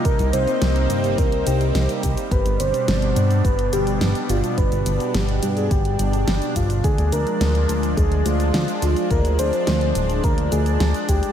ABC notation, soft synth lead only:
X:1
M:4/4
L:1/16
Q:1/4=106
K:Gphr
V:1 name="Soft synth lead"
B2 c6 B2 G4 G2 | =B2 c6 B2 G4 F2 | =B4 G3 A G6 F2 | A2 B6 A2 F4 F2 |
B2 c6 B2 A4 G2 |]